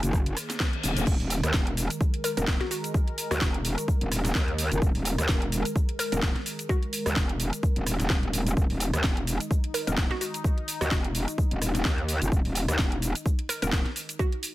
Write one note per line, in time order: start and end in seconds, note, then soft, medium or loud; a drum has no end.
0.00 0.35 F#1 loud
0.00 14.55 D#3 medium
0.00 1.03 A#3 medium
0.00 1.06 G#4 medium
0.00 closed hi-hat medium
0.00 cabasa soft
0.13 kick loud
0.13 reverse cymbal medium
0.13 cabasa soft
0.26 closed hi-hat medium
0.37 cross-stick medium
0.37 open hi-hat loud
0.37 cabasa medium
0.50 snare soft
0.50 closed hi-hat medium
0.50 cabasa soft
0.60 kick loud
0.60 snare loud
0.60 cabasa soft
0.73 closed hi-hat soft
0.83 0.94 D#1 loud
0.83 open hi-hat loud
0.83 cabasa medium
0.96 1.05 D#1 loud
0.96 closed hi-hat medium
0.96 cabasa soft
1.07 1.18 D#1 loud
1.07 14.55 G#3 medium
1.07 8.55 A#4 medium
1.07 kick loud
1.07 crash medium
1.07 cabasa soft
1.20 1.41 D#1 loud
1.20 open hi-hat medium
1.30 open hi-hat loud
1.30 cabasa medium
1.43 1.52 D#2 loud
1.43 cross-stick medium
1.43 closed hi-hat medium
1.43 cabasa soft
1.54 1.88 E1 loud
1.54 kick loud
1.54 snare loud
1.54 cabasa soft
1.67 closed hi-hat medium
1.77 open hi-hat loud
1.77 cabasa medium
1.90 closed hi-hat medium
1.90 cabasa soft
2.01 kick loud
2.01 cabasa soft
2.14 closed hi-hat medium
2.24 2.32 A#4 medium
2.24 cross-stick medium
2.24 open hi-hat loud
2.24 cabasa medium
2.37 2.46 D#1 loud
2.37 2.44 A#4 medium
2.37 closed hi-hat medium
2.37 cabasa soft
2.47 2.59 D#1 loud
2.47 kick loud
2.47 snare loud
2.47 cabasa soft
2.61 2.67 F#4 medium
2.61 snare soft
2.61 closed hi-hat soft
2.71 2.79 F#4 medium
2.71 open hi-hat loud
2.71 cabasa medium
2.84 closed hi-hat medium
2.84 cabasa soft
2.94 kick loud
2.94 cabasa soft
3.08 closed hi-hat soft
3.18 open hi-hat loud
3.18 cabasa medium
3.31 3.40 D#2 loud
3.31 3.37 F#4 medium
3.31 cross-stick medium
3.31 open hi-hat medium
3.31 cabasa soft
3.41 3.76 E1 loud
3.41 3.50 F#4 medium
3.41 kick loud
3.41 snare loud
3.41 cabasa soft
3.54 closed hi-hat medium
3.65 open hi-hat loud
3.65 cabasa medium
3.78 closed hi-hat medium
3.78 cabasa soft
3.88 kick loud
3.88 cabasa soft
4.01 4.33 D#1 medium
4.01 closed hi-hat medium
4.12 cross-stick medium
4.12 open hi-hat loud
4.12 cabasa medium
4.25 snare soft
4.25 closed hi-hat medium
4.25 cabasa soft
4.35 4.69 D#2 loud
4.35 kick loud
4.35 snare loud
4.35 cabasa soft
4.48 closed hi-hat soft
4.58 open hi-hat loud
4.58 cabasa medium
4.72 4.80 F#1 loud
4.72 closed hi-hat medium
4.72 cabasa soft
4.82 4.93 D#1 loud
4.82 kick loud
4.82 cabasa soft
4.95 5.16 D#1 loud
4.95 open hi-hat medium
5.05 open hi-hat loud
5.05 cabasa medium
5.18 5.27 D#2 loud
5.18 cross-stick medium
5.18 closed hi-hat medium
5.18 cabasa soft
5.29 5.63 E1 loud
5.29 kick loud
5.29 snare loud
5.29 cabasa soft
5.42 closed hi-hat medium
5.52 open hi-hat loud
5.52 cabasa medium
5.65 closed hi-hat medium
5.65 cabasa soft
5.76 kick loud
5.76 cabasa soft
5.89 closed hi-hat medium
5.99 6.07 A#4 medium
5.99 cross-stick medium
5.99 open hi-hat loud
5.99 cabasa medium
6.12 6.21 D#1 loud
6.12 6.19 A#4 medium
6.12 closed hi-hat medium
6.12 cabasa soft
6.22 6.34 D#1 loud
6.22 kick loud
6.22 snare loud
6.22 cabasa soft
6.36 snare soft
6.36 closed hi-hat soft
6.46 open hi-hat loud
6.46 cabasa medium
6.59 closed hi-hat medium
6.59 cabasa soft
6.69 7.36 F#4 medium
6.69 kick loud
6.69 cabasa soft
6.83 closed hi-hat soft
6.93 open hi-hat loud
6.93 cabasa medium
7.06 7.15 D#2 loud
7.06 cross-stick medium
7.06 open hi-hat medium
7.06 cabasa soft
7.16 7.51 E1 loud
7.16 kick loud
7.16 snare loud
7.16 cabasa soft
7.29 closed hi-hat medium
7.40 open hi-hat loud
7.40 cabasa medium
7.53 closed hi-hat medium
7.53 cabasa soft
7.63 kick loud
7.63 cabasa soft
7.76 7.98 D#1 loud
7.76 closed hi-hat medium
7.87 cross-stick medium
7.87 open hi-hat loud
7.87 cabasa medium
8.00 8.08 D#1 loud
8.00 snare soft
8.00 closed hi-hat medium
8.00 cabasa soft
8.10 8.55 D#1 loud
8.10 kick loud
8.10 snare loud
8.10 cabasa soft
8.23 closed hi-hat soft
8.33 open hi-hat loud
8.33 cabasa medium
8.47 closed hi-hat medium
8.47 cabasa soft
8.57 8.68 D#1 loud
8.57 14.55 D#4 medium
8.57 kick loud
8.57 cabasa soft
8.70 8.91 D#1 loud
8.70 open hi-hat medium
8.80 open hi-hat loud
8.80 cabasa medium
8.93 9.02 D#2 loud
8.93 cross-stick medium
8.93 closed hi-hat medium
8.93 cabasa soft
9.04 9.38 E1 loud
9.04 kick loud
9.04 snare loud
9.04 cabasa soft
9.17 closed hi-hat medium
9.27 open hi-hat loud
9.27 cabasa medium
9.40 closed hi-hat medium
9.40 cabasa soft
9.51 kick loud
9.51 cabasa soft
9.64 closed hi-hat medium
9.74 9.82 A#4 medium
9.74 cross-stick medium
9.74 open hi-hat loud
9.74 cabasa medium
9.87 9.96 D#1 medium
9.87 9.94 A#4 medium
9.87 closed hi-hat medium
9.87 cabasa soft
9.97 10.09 D#1 loud
9.97 kick loud
9.97 snare loud
9.97 cabasa soft
10.11 10.17 F#4 medium
10.11 snare soft
10.11 closed hi-hat soft
10.21 10.29 F#4 medium
10.21 open hi-hat loud
10.21 cabasa medium
10.34 closed hi-hat medium
10.34 cabasa soft
10.44 kick loud
10.44 cabasa soft
10.58 closed hi-hat soft
10.68 open hi-hat loud
10.68 cabasa medium
10.81 10.90 D#2 loud
10.81 10.88 F#4 medium
10.81 cross-stick medium
10.81 open hi-hat medium
10.81 cabasa soft
10.91 11.26 E1 loud
10.91 11.00 F#4 medium
10.91 kick loud
10.91 snare loud
10.91 cabasa soft
11.04 closed hi-hat medium
11.15 open hi-hat loud
11.15 cabasa medium
11.28 closed hi-hat medium
11.28 cabasa soft
11.38 kick loud
11.38 cabasa soft
11.51 11.83 D#1 medium
11.51 closed hi-hat medium
11.62 cross-stick medium
11.62 open hi-hat loud
11.62 cabasa medium
11.75 snare soft
11.75 closed hi-hat medium
11.75 cabasa soft
11.85 12.19 D#2 loud
11.85 kick loud
11.85 snare loud
11.85 cabasa soft
11.98 closed hi-hat soft
12.09 open hi-hat loud
12.09 cabasa medium
12.22 12.30 F#1 loud
12.22 closed hi-hat medium
12.22 cabasa soft
12.32 12.43 D#1 loud
12.32 kick loud
12.32 cabasa soft
12.45 12.66 D#1 loud
12.45 open hi-hat medium
12.55 open hi-hat loud
12.55 cabasa medium
12.68 12.77 D#2 loud
12.68 cross-stick medium
12.68 closed hi-hat medium
12.68 cabasa soft
12.79 13.13 E1 loud
12.79 kick loud
12.79 snare loud
12.79 cabasa soft
12.92 closed hi-hat medium
13.02 open hi-hat loud
13.02 cabasa medium
13.15 closed hi-hat medium
13.15 cabasa soft
13.26 kick loud
13.26 cabasa soft
13.39 closed hi-hat medium
13.49 13.57 A#4 medium
13.49 cross-stick medium
13.49 open hi-hat loud
13.49 cabasa medium
13.62 13.71 D#1 loud
13.62 13.69 A#4 medium
13.62 closed hi-hat medium
13.62 cabasa soft
13.72 13.84 D#1 medium
13.72 kick loud
13.72 snare loud
13.72 cabasa soft
13.85 snare soft
13.85 closed hi-hat soft
13.96 open hi-hat loud
13.96 cabasa medium
14.09 closed hi-hat medium
14.09 cabasa medium
14.19 14.55 F#4 loud
14.19 kick loud
14.19 cabasa soft
14.32 closed hi-hat soft
14.43 open hi-hat loud
14.43 cabasa medium